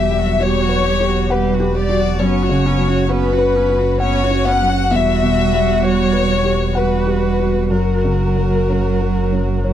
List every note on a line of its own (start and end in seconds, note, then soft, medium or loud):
0.00 2.21 E1 medium
0.00 2.16 E2 medium
0.00 0.28 B2 medium
0.00 0.21 G3 medium
0.00 0.20 G4 medium
0.00 0.39 E5 loud
0.10 0.58 G3 medium
0.19 0.41 F#3 medium
0.19 0.40 F#4 medium
0.40 0.67 G3 medium
0.40 0.89 F#4 medium
0.40 0.64 G4 medium
0.40 1.31 C#5 loud
0.62 0.89 F#3 medium
0.62 0.87 F#4 medium
0.69 1.18 B4 medium
0.85 1.11 G3 medium
0.85 1.10 G4 medium
1.00 1.49 G4 medium
1.08 1.31 F#3 medium
1.08 1.30 F#4 medium
1.30 1.56 G3 medium
1.30 1.56 G4 medium
1.30 1.76 B4 loud
1.30 1.78 F#5 medium
1.54 1.78 F#3 medium
1.54 1.79 F#4 medium
1.60 2.08 G4 medium
1.76 2.01 G3 medium
1.76 2.01 G4 medium
1.76 2.21 D5 loud
1.89 2.20 F#4 medium
2.00 2.21 F#3 medium
2.00 2.21 F#4 medium
2.19 4.94 F#1 medium
2.19 4.87 F#2 medium
2.19 2.45 B3 medium
2.19 2.44 C#4 medium
2.19 3.10 C#5 loud
2.43 2.66 C#4 medium
2.43 2.67 F#4 medium
2.49 2.97 C#3 medium
2.65 2.89 B3 medium
2.65 2.90 C#4 medium
2.78 3.27 F#3 medium
2.88 3.09 C#4 medium
2.88 3.09 F#4 medium
3.08 3.34 B3 medium
3.08 3.35 C#4 medium
3.08 3.57 F#4 medium
3.08 4.00 B4 loud
3.32 3.56 C#4 medium
3.32 3.58 F#4 medium
3.39 3.88 B4 medium
3.54 3.81 B3 medium
3.54 3.80 C#4 medium
3.69 4.18 F#4 medium
3.79 4.00 C#4 medium
3.79 4.01 F#4 medium
4.00 4.26 B3 medium
4.00 4.25 C#4 medium
4.00 4.45 C#5 loud
4.00 4.49 F#5 medium
4.24 4.47 C#4 medium
4.24 4.48 F#4 medium
4.30 4.79 F#4 medium
4.46 4.70 B3 medium
4.46 4.72 C#4 medium
4.46 4.92 F#5 loud
4.60 4.91 F#3 medium
4.69 4.90 C#4 medium
4.69 4.92 F#4 medium
4.91 7.72 E1 medium
4.91 7.67 E2 medium
4.91 6.71 G3 medium
4.91 6.72 F#4 medium
4.91 5.84 E5 loud
5.22 5.71 B2 medium
5.53 6.02 G3 medium
5.82 6.32 F#4 medium
5.82 6.76 C#5 loud
6.13 6.63 B4 medium
6.44 6.94 G4 medium
6.75 7.73 G3 medium
6.75 7.70 F#4 medium
6.75 7.72 B4 loud
6.75 7.26 F#5 medium
7.07 7.58 G4 medium
7.39 7.72 F#4 medium
7.70 9.73 F#1 medium
7.70 9.73 F#2 medium
7.70 9.73 F#3 medium
7.70 9.73 F#4 medium
7.70 9.73 A#4 medium
8.04 8.56 C#3 soft
8.36 8.88 F#3 soft
8.69 9.20 C#4 medium
9.01 9.52 F#4 soft
9.32 9.73 C#4 soft
9.64 9.73 C#5 medium